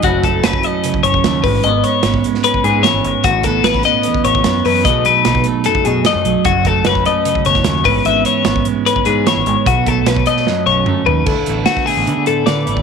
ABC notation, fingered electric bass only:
X:1
M:4/4
L:1/16
Q:1/4=150
K:C#m
V:1 name="Fingered electric bass" clef=bass
F,,,4 F,,,2 z4 F,,,2 D,,2 G,,,2 | G,,,2 z2 G,,,2 z4 G,,2 z G,,, G,,, z | A,,,4 A,,,2 z4 A,,,2 F,,2 F,,2 | B,,,2 z2 B,,,2 z4 B,,2 z F,, B,,, z |
F,,,4 F,,,2 z4 F,,,2 D,,2 G,,,2 | G,,,2 z2 G,,,2 z4 G,,2 z G,,, G,,, z | B,,,4 B,,,2 z4 B,,,2 F,,2 D,,2 | =D,, z A,,,2 z3 A,,, =D, D,3 D,2 A,,,2 |]